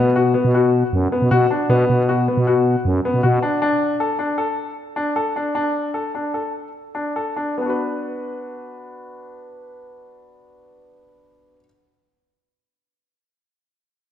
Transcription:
Already playing: fm bass B2
0.16 grand piano F#4
0.34 grand piano B3
0.45 fm bass B2
0.54 grand piano F#4
0.93 fm bass F#2
1.12 grand piano B3
1.22 fm bass B2
1.31 fm bass B2, grand piano F#4
1.51 grand piano D4
1.70 fm bass B2, grand piano B3
1.90 fm bass B2
2.09 grand piano F#4
2.28 grand piano B3
2.37 fm bass B2
2.47 grand piano F#4
2.85 fm bass F#2
3.05 grand piano B3
3.14 fm bass B2
3.23 fm bass B2, grand piano F#4
3.42 grand piano D4
3.62 grand piano D4
4.00 grand piano A4
4.19 grand piano D4
4.38 grand piano A4
4.96 grand piano D4
5.16 grand piano A4
5.36 grand piano D4
5.55 grand piano D4
5.94 grand piano A4
6.15 grand piano D4
6.34 grand piano A4
6.95 grand piano D4
7.16 grand piano A4
7.36 grand piano D4
7.58 grand piano B3 D4
7.66 grand piano F#4 B4

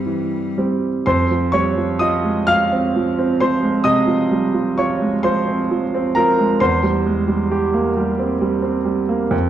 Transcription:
Already playing: grand piano G2 G3 C4, cello G3
0.06 grand piano E3
0.58 grand piano G3 C4
1.06 grand piano F2 C5 C6
1.31 grand piano F3
1.52 grand piano G3 C#5 C#6
1.77 grand piano F3
1.99 grand piano F4 D#5 D#6
2.24 grand piano G#3
2.47 grand piano F3 F5 F6
2.72 grand piano C4
2.96 grand piano F3
3.19 grand piano C4
3.41 grand piano F3 C5 C6
3.63 grand piano G#3
3.84 grand piano C3 D#5 D#6
4.07 grand piano F3
4.31 grand piano G3
4.54 grand piano F3
4.78 grand piano F4 C#5 C#6
5.01 grand piano G#3
5.23 grand piano F3 C5 C6
5.48 grand piano C4
5.71 grand piano F3
5.94 grand piano C4
6.15 grand piano F3 A#4 A#5
6.39 grand piano G#3
6.60 grand piano E2 C5 C6
6.83 grand piano G3
7.06 grand piano G#3
7.28 grand piano G3
7.51 grand piano G4
7.74 grand piano A#3
7.97 grand piano G3
8.19 grand piano C4
8.41 grand piano G3
8.62 grand piano C4
8.85 grand piano G3
9.09 grand piano A#3
9.31 grand piano F2

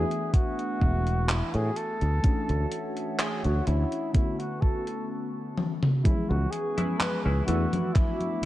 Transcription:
Already playing: fm electric piano E3 A3 B3 D4 F#4, flugelhorn G#4, ambient pad B4 E5
0.11 closed hi-hat
0.34 flugelhorn F#4, kick, closed hi-hat
0.59 closed hi-hat
0.81 fretless electric bass E1, kick
1.07 closed hi-hat
1.29 flugelhorn E4, clap, closed hi-hat
1.54 fretless electric bass A2, flugelhorn G#4, closed hi-hat
1.76 flugelhorn A4, closed hi-hat
2.01 fretless electric bass D2, closed hi-hat
2.22 fm electric piano E3 A3 C#4 D4 F#4, ambient pad C#5 E5 F#5, kick, closed hi-hat
2.49 fretless electric bass D2, closed hi-hat
2.72 closed hi-hat
2.97 closed hi-hat
3.19 flugelhorn G#4, clap, closed hi-hat
3.44 fretless electric bass D2, flugelhorn F#4, closed hi-hat
3.66 fretless electric bass D2, flugelhorn E4, closed hi-hat
3.92 closed hi-hat
4.13 fm electric piano D3 A3 B3 C#4 F#4, flugelhorn E4, ambient pad B4 A5 C#6, kick, closed hi-hat
4.39 flugelhorn F#4, closed hi-hat
4.61 flugelhorn A4, kick
4.87 closed hi-hat
5.58 high tom
5.83 mid tom
6.04 fm electric piano E3 G#3 B3 C#4 G#4, flugelhorn E4, ambient pad B4 E5 G#5 C#6, muted fretless electric bass stroke, kick, closed hi-hat, high conga
6.29 fretless electric bass C#2, flugelhorn F#4, high conga
6.51 flugelhorn G#4, closed hi-hat
6.78 clean electric guitar C#4 E4 G#4 B4, closed hi-hat, high conga
6.98 flugelhorn B4, clap, closed hi-hat, high conga
7.24 fretless electric bass C#2, clean electric guitar C#4 E4 G#4 B4, flugelhorn G#4, high conga
7.46 fretless electric bass E2, fm electric piano E3 A3 B3 D4 F#4, clean electric guitar D4 E4 A4 B4, flugelhorn F#4, ambient pad B4 D6, closed hi-hat
7.73 closed hi-hat, high conga
7.94 flugelhorn E4, kick, clap, closed hi-hat, high conga
8.20 closed hi-hat, high conga

